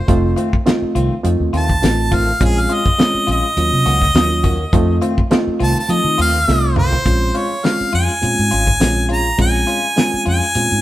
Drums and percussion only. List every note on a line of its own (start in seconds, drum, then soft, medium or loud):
0.08 kick loud
0.08 closed hi-hat medium
0.37 closed hi-hat medium
0.53 kick medium
0.67 snare loud
0.67 closed hi-hat medium
0.96 closed hi-hat medium
1.25 closed hi-hat medium
1.54 closed hi-hat medium
1.69 kick medium
1.83 snare loud
1.83 closed hi-hat medium
2.12 kick medium
2.12 closed hi-hat medium
2.41 kick loud
2.41 closed hi-hat medium
2.70 closed hi-hat medium
2.86 kick medium
2.99 snare loud
2.99 closed hi-hat medium
3.28 closed hi-hat medium
3.57 closed hi-hat medium
3.86 snare soft
3.86 closed hi-hat medium
4.02 kick medium
4.02 snare soft
4.15 snare loud
4.15 closed hi-hat medium
4.44 kick medium
4.44 closed hi-hat medium
4.73 kick loud
4.73 closed hi-hat medium
5.02 closed hi-hat medium
5.18 kick medium
5.31 snare loud
5.31 closed hi-hat medium
5.60 open hi-hat medium
5.89 closed hi-hat medium
6.18 closed hi-hat medium
6.48 snare medium
6.76 mid tom loud
6.92 floor tom medium
7.06 kick loud
7.06 closed hi-hat medium
7.35 closed hi-hat medium
7.64 snare loud
7.64 closed hi-hat medium
7.80 closed hi-hat soft
7.93 closed hi-hat medium
8.09 closed hi-hat soft
8.23 closed hi-hat medium
8.38 closed hi-hat soft
8.52 closed hi-hat medium
8.67 kick medium
8.80 snare loud
8.80 closed hi-hat medium
9.10 closed hi-hat medium
9.39 kick loud
9.39 closed hi-hat medium
9.68 closed hi-hat medium
9.97 snare loud
9.97 closed hi-hat medium
10.26 closed hi-hat medium
10.55 closed hi-hat medium
10.71 closed hi-hat soft